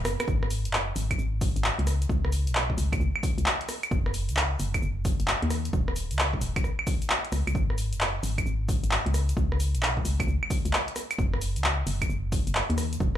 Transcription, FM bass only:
0.05 0.16 F#1 loud
0.28 0.67 G#1 loud
0.65 0.92 F#1 medium
0.96 1.14 G#1 medium
1.19 1.50 G#1 medium
1.56 1.71 G#1 medium
1.79 2.06 C#2 medium
2.09 2.48 C#2 loud
2.47 2.74 B1 medium
2.78 2.96 C#2 medium
3.00 3.11 C#2 medium
3.38 3.44 C#2 medium
3.91 4.31 F#1 loud
4.29 4.56 C#2 medium
4.60 4.78 F#1 medium
4.82 5.13 F#1 medium
5.20 5.34 F#1 medium
5.43 5.70 D#2 medium
5.73 6.12 D#1 loud
6.11 6.38 C#2 medium
6.41 6.60 D#1 medium
7.32 7.43 C#2 medium
7.47 7.53 C#2 medium
7.55 7.94 G#1 loud
7.93 8.20 F#1 medium
8.23 8.42 G#1 medium
8.46 8.77 G#1 medium
8.83 8.98 G#1 medium
9.06 9.33 C#2 medium
9.37 9.76 C#2 loud
9.74 10.01 B1 medium
10.05 10.23 C#2 medium
10.28 10.38 C#2 medium
10.65 10.71 C#2 medium
11.19 11.58 F#1 loud
11.56 11.83 C#2 medium
11.87 12.05 F#1 medium
12.10 12.41 F#1 medium
12.47 12.62 F#1 medium
12.70 12.97 D#2 medium
13.00 13.18 D#1 loud

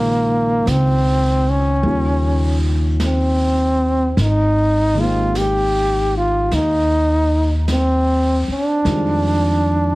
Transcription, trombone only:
0.00 0.71 A#3 medium
0.70 1.52 C4 medium
1.50 2.65 C#4 medium
3.05 4.16 C4 medium
4.22 5.01 D#4 medium
5.00 5.39 F4 medium
5.38 6.16 G4 medium
6.17 6.56 F4 medium
6.54 7.53 D#4 medium
7.71 8.46 C4 medium
8.52 9.95 D4 medium

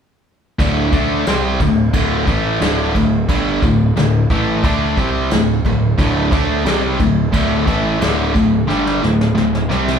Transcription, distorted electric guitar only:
0.59 0.91 D2 loud
0.59 0.92 A2 medium
0.59 0.91 D3 loud
0.92 1.25 D3 medium
0.92 1.25 A3 medium
0.92 1.26 D4 medium
1.26 1.59 C3 loud
1.26 1.59 G3 loud
1.26 1.59 C4 loud
1.61 1.87 D2 medium
1.61 1.88 A2 medium
1.93 2.26 D2 medium
1.93 2.26 A2 loud
1.93 2.27 D3 loud
2.27 2.60 A2 medium
2.27 2.60 E3 medium
2.27 2.60 A3 loud
2.61 2.94 D2 medium
2.61 2.94 A2 medium
2.61 2.94 D3 medium
2.96 3.22 D2 medium
2.96 3.23 A2 medium
3.29 3.61 G2 medium
3.29 3.62 D3 loud
3.29 3.62 G3 loud
3.63 3.89 D2 medium
3.63 3.90 A2 medium
3.96 4.23 D2 medium
3.96 4.23 A2 medium
4.30 4.63 A2 medium
4.30 4.63 E3 medium
4.30 4.63 A3 loud
4.64 4.96 D3 medium
4.64 4.97 A3 loud
4.64 4.97 D4 loud
4.97 5.30 C3 medium
4.97 5.30 G3 medium
4.97 5.30 C4 medium
5.32 5.58 D2 medium
5.32 5.58 A2 medium
5.66 5.92 D2 medium
5.66 5.92 A2 medium
5.98 6.31 D2 loud
5.98 6.31 A2 loud
5.98 6.30 D3 loud
6.31 6.65 D3 medium
6.31 6.65 A3 loud
6.31 6.65 D4 medium
6.65 6.98 C3 loud
6.65 6.98 G3 medium
6.65 6.99 C4 loud
6.99 7.26 D2 medium
6.99 7.27 A2 medium
7.33 7.66 D2 medium
7.33 7.65 A2 loud
7.33 7.67 D3 loud
7.67 7.99 A2 medium
7.67 8.00 E3 medium
7.67 8.00 A3 medium
8.00 8.32 D2 medium
8.00 8.33 A2 medium
8.00 8.34 D3 loud
8.34 8.61 D2 medium
8.34 8.62 A2 medium
8.68 9.01 G2 medium
8.68 9.02 D3 loud
8.68 9.02 G3 loud
9.01 9.29 D2 medium
9.01 9.30 A2 medium
9.35 9.63 D2 medium
9.35 9.63 A2 medium
9.69 9.99 C3 medium
9.69 9.99 G3 medium
9.69 9.99 C4 medium

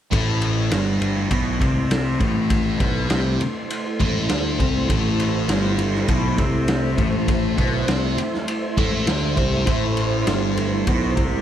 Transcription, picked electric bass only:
0.12 0.68 A1 medium
0.72 1.27 G1 medium
1.31 1.59 B1 medium
1.61 2.17 C2 medium
2.21 2.76 A1 medium
2.81 3.08 B1 medium
3.10 3.38 C2 medium
4.00 4.28 A1 loud
4.30 4.58 D2 medium
4.60 4.87 C2 medium
4.90 5.45 A1 loud
5.49 6.04 G1 medium
6.09 6.36 B1 medium
6.39 6.94 C2 medium
6.98 7.54 A1 medium
7.58 7.86 B1 medium
7.88 8.16 C2 medium
8.77 9.05 A1 medium
9.07 9.35 D2 medium
9.38 9.65 C2 medium
9.67 10.23 A1 medium
10.27 10.83 G1 medium
10.88 11.15 B1 medium
11.17 11.41 C2 medium

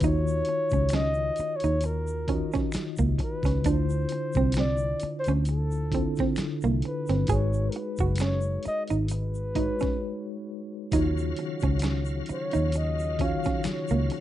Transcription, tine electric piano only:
0.00 2.27 D#3 medium
0.00 0.02 D#4 medium
0.00 1.59 D#4 medium
0.00 0.03 F4 medium
0.00 1.59 F4 medium
0.00 0.03 F#4 medium
0.00 1.60 F#4 medium
0.00 0.04 C#5 medium
0.04 1.60 C#5 medium
2.27 3.47 D#3 medium
2.27 3.47 D#4 medium
2.27 3.47 F4 medium
2.27 3.48 F#4 medium
2.27 3.48 D#5 medium
3.64 5.22 D3 medium
3.64 5.22 D4 medium
3.64 5.23 E4 medium
3.64 5.23 F4 medium
3.64 5.24 C5 medium
5.91 7.10 D3 medium
5.91 7.11 D4 medium
5.91 7.11 E4 medium
5.91 7.11 F4 medium
5.91 7.12 A4 medium
7.27 8.85 G#3 medium
7.27 8.86 D#4 medium
7.27 8.86 F#4 medium
7.27 8.87 G#4 medium
7.27 8.87 B4 medium
9.55 10.74 G#3 medium
9.55 10.74 D#4 medium
9.55 10.75 F#4 medium
9.55 10.75 B4 medium
9.55 10.75 C#5 medium
10.91 12.49 D#3 medium
10.91 12.50 D#4 medium
10.91 12.50 F4 medium
10.91 12.50 F#4 medium
10.91 12.51 C#5 loud
13.18 14.20 D#3 medium
13.18 14.20 D#4 medium
13.18 14.20 F4 medium
13.18 14.20 F#4 medium
13.18 14.20 C#5 medium

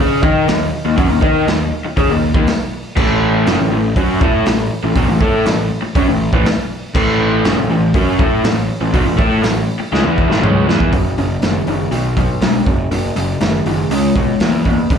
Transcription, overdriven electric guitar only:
0.00 0.22 C#4 loud
0.00 0.22 G#4 loud
0.00 0.23 C#5 loud
0.23 0.47 D#4 loud
0.23 0.47 A#4 loud
0.23 0.48 D#5 loud
0.48 0.68 D#3 medium
0.48 0.68 A#3 medium
0.85 0.96 D#3 medium
0.85 0.97 A#3 medium
0.96 1.09 F#3 medium
0.96 1.09 C#4 loud
1.09 1.22 D#3 medium
1.09 1.21 A#3 medium
1.21 1.46 D#4 loud
1.21 1.46 A#4 loud
1.21 1.46 D#5 loud
1.47 1.67 D#3 medium
1.47 1.67 A#3 medium
1.85 muted overdriven electric guitar stroke medium
1.97 2.09 C#4 medium
1.97 2.09 G#4 loud
2.09 2.29 D#3 medium
2.09 2.30 A#3 medium
2.35 2.46 D#3 medium
2.35 2.47 A#3 loud
2.96 3.45 A2 medium
2.96 3.46 E3 loud
2.96 3.46 A3 loud
3.46 3.58 F#2 loud
3.46 3.58 C#3 loud
3.59 3.70 A2 medium
3.59 3.71 E3 medium
3.72 3.91 A2 medium
3.72 3.92 E3 medium
3.96 4.21 F#3 medium
3.96 4.20 C#4 loud
3.96 4.21 F#4 loud
4.21 4.45 A3 medium
4.21 4.45 E4 loud
4.21 4.45 A4 loud
4.46 4.66 A2 medium
4.46 4.67 E3 medium
4.84 4.95 A2 medium
4.84 4.96 E3 medium
4.96 5.07 B2 medium
4.96 5.08 F#3 loud
5.09 5.21 A2 medium
5.09 5.20 E3 medium
5.20 5.45 A3 medium
5.20 5.45 E4 medium
5.20 5.45 A4 loud
5.46 5.66 A2 medium
5.46 5.66 E3 medium
5.82 muted overdriven electric guitar stroke medium
5.96 6.07 F#3 medium
5.96 6.07 C#4 loud
6.09 6.28 A2 medium
6.09 6.28 E3 medium
6.33 6.45 A2 medium
6.33 6.45 E3 loud
6.95 7.44 A2 loud
6.95 7.44 E3 loud
6.95 7.44 A3 loud
7.45 7.57 F#2 loud
7.45 7.57 C#3 loud
7.58 7.69 A2 medium
7.58 7.70 E3 medium
7.70 7.89 A2 medium
7.70 7.90 E3 medium
7.94 8.18 F#3 loud
7.94 8.18 C#4 loud
7.94 8.19 F#4 loud
8.20 8.43 A3 loud
8.20 8.44 E4 loud
8.20 8.44 A4 loud
8.44 8.64 A2 medium
8.44 8.64 E3 medium
8.81 8.93 A2 medium
8.81 8.94 E3 medium
8.94 9.05 B2 medium
8.94 9.06 F#3 loud
9.05 9.18 A2 medium
9.05 9.17 E3 medium
9.17 9.42 A3 loud
9.17 9.42 E4 loud
9.17 9.42 A4 loud
9.42 9.63 A2 medium
9.42 9.63 E3 medium
9.80 muted overdriven electric guitar stroke medium
9.92 10.04 C#3 loud
9.92 10.05 G#3 loud
10.05 10.29 E3 medium
10.05 10.30 B3 medium
10.05 10.30 E4 medium
10.29 10.41 A2 loud
10.29 10.42 E3 loud
10.43 10.67 C#3 loud
10.43 10.67 G#3 medium
10.43 10.67 C#4 medium
10.67 10.92 E3 medium
10.67 10.92 B3 loud
10.67 10.92 E4 loud
10.92 11.15 F#2 medium
10.92 11.15 C#3 medium
11.18 11.40 F#2 medium
11.18 11.40 C#3 medium
11.43 11.65 F#2 medium
11.43 11.65 D#3 medium
11.68 11.90 F#2 medium
11.68 11.90 D#3 medium
11.91 12.14 B2 medium
11.91 12.14 F#3 medium
12.17 12.39 B2 medium
12.17 12.39 F#3 medium
12.42 12.64 B2 medium
12.42 12.64 G#3 medium
12.66 12.89 F#2 medium
12.66 12.89 C#3 medium
12.91 13.14 F#2 medium
12.91 13.14 C#3 medium
13.16 13.39 F#2 medium
13.16 13.39 C#3 medium
13.41 13.63 F#2 medium
13.41 13.64 D#3 loud
13.67 13.89 F#2 medium
13.67 13.89 D#3 medium
13.91 14.14 C#3 medium
13.91 14.14 G#3 loud
14.16 14.39 C#3 medium
14.16 14.39 G#3 medium
14.42 14.64 C#3 medium
14.42 14.64 A#3 medium
14.66 14.88 C#3 medium
14.66 14.88 A#3 medium
14.91 14.98 F#2 medium
14.91 14.98 C#3 medium

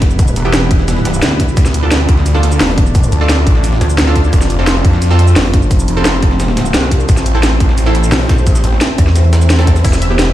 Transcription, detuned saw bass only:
1.57 2.07 D2 medium
2.09 2.59 D2 loud
3.12 3.45 D2 loud
3.47 3.80 A1 loud
4.33 4.83 F1 medium
4.85 5.35 F2 loud
7.09 7.59 A1 medium
7.60 8.11 A1 loud
8.64 8.80 A1 loud
9.85 10.33 E1 medium

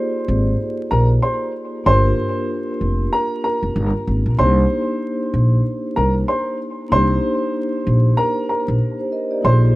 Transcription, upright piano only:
0.00 0.56 C5 medium
0.00 0.56 C6 medium
0.91 1.08 A#4 medium
0.91 1.07 A#5 medium
1.22 1.51 C5 medium
1.22 1.51 C6 medium
1.86 3.09 C5 medium
1.86 3.08 C6 loud
3.13 3.41 A#4 medium
3.13 3.41 A#5 medium
3.44 3.91 A#4 medium
3.44 3.91 A#5 medium
4.39 5.61 C5 medium
4.39 5.61 C6 medium
5.96 6.13 A#4 medium
5.96 6.13 A#5 medium
6.28 6.57 C5 medium
6.28 6.56 C6 medium
6.92 8.14 C5 medium
6.92 8.14 C6 loud
8.17 8.46 A#4 medium
8.17 8.46 A#5 medium
8.49 8.96 A#4 medium
8.49 8.96 A#5 medium
9.45 9.76 C5 medium
9.45 9.76 C6 medium

